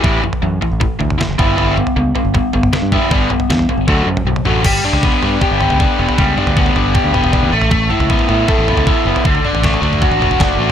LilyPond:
<<
  \new Staff \with { instrumentName = "Overdriven electric guitar" } { \time 4/4 \key g \lydian \tempo 4 = 157 <a, e g>8 <a, e>8 <a, e>8 <a, e>8 <a, e>8 <a, e>8 <a, e>8 <g b e'>8 | <g b e'>8 <g b>8 <g b>8 <g b>8 <g b>8 <g b>8 <g b>8 <g b e'>8 | <g b d'>8 <g b>8 <g b>8 <g b>8 <d fis a>8 <d fis>8 <d fis>8 <d fis a>8 | g8 d'8 b8 d'8 g'8 b8 d'8 b8 |
g8 d'8 b8 d'8 g'8 b8 d'8 a8 | a8 e'8 b8 e'8 a'8 b8 e'8 b8 | d8 d'8 a8 d'8 fis'8 a8 d'8 a8 | }
  \new Staff \with { instrumentName = "Fingered electric bass" } { \clef bass \time 4/4 \key g \lydian a,,8 r8 fis,8 r16 a,,8 r16 d,8 r16 fis,,16 g,,8~ | g,,4 cis,8 r16 g,,8 r16 g,,8 r16 g,8 r16 | g,,8 r8 e,8 r16 g,,16 d,8 fis,8 b,,8 a,,8 | g,,8 r16 cis,8 r16 g,8 r16 g,,8 cis,8 r16 e,,16 r16 |
cis,8 r16 d,8. g,,8. d,16 e,,8. e,16 a,,8~ | a,,8. cis,8 r16 a,8 r16 a,,8 cis,8 r16 fis,,16 r16 | d,8 r16 a,,8. d,8. a,,16 e,,8 fis,,8 a,,8 | }
  \new DrumStaff \with { instrumentName = "Drums" } \drummode { \time 4/4 <bd tomfh>8 toml16 tomfh16 r8 tomfh8 <bd tomfh>8 tomfh16 <tomfh toml>16 <sn toml>8 <bd toml>8 | tomfh8 toml16 tomfh16 r8 tomfh8 <bd tomfh>8 tomfh16 <tomfh toml>16 <sn toml>8 <bd toml>8 | <bd tomfh>8 <tomfh toml>16 tomfh16 sn16 tomfh16 tomfh8 <bd tomfh>8. <tomfh toml>16 r16 tomfh16 toml8 | <cymc bd tomfh>8 toml16 tomfh16 bd16 tomfh16 tomfh8 <bd tomfh>8 <tomfh toml>16 tomfh16 bd8. tomfh16 |
<bd tomfh>8 toml16 tomfh16 bd16 tomfh16 tomfh8 <bd tomfh>8 <tomfh toml>16 tomfh16 bd8. tomfh16 | <bd tomfh>8 toml16 tomfh16 bd16 tomfh16 tomfh8 <bd tomfh>8 <tomfh toml>16 tomfh16 bd8. tomfh16 | <bd tomfh>16 tomfh16 toml16 tomfh16 <bd sn>16 tomfh16 tomfh16 toml16 <bd tomfh>16 tomfh16 <tomfh toml>16 tomfh16 <bd sn toml>4 | }
>>